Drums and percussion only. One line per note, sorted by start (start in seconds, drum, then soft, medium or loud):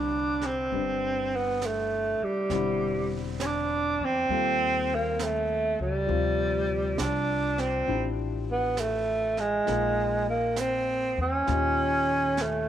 0.41 snare soft
0.72 brush sweep soft
1.61 snare soft
1.61 hi-hat pedal soft
2.50 brush sweep soft
2.50 snare soft
3.40 snare soft
3.40 hi-hat pedal soft
4.30 brush sweep soft
5.19 snare soft
5.19 hi-hat pedal soft
6.09 brush sweep soft
6.98 snare soft
6.98 hi-hat pedal soft
7.58 snare soft
7.87 brush sweep soft
8.77 snare soft
8.77 hi-hat pedal soft
9.37 snare soft
9.67 brush sweep soft
9.67 snare soft
10.56 snare soft
10.56 hi-hat pedal medium
11.47 brush sweep soft
11.47 snare soft
12.37 snare soft
12.37 hi-hat pedal soft